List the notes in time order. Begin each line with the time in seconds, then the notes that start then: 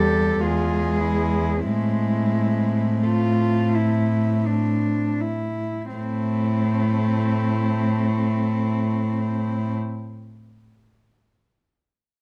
Already playing: E2 G3 G4 A4
0.40 E2 G#3 F4 G#4
1.00 E4
1.64 A2 G#3 C4 E4
3.03 A3 F4
3.74 E4
4.46 D4
5.20 E4
5.93 A2 A3 C4 E4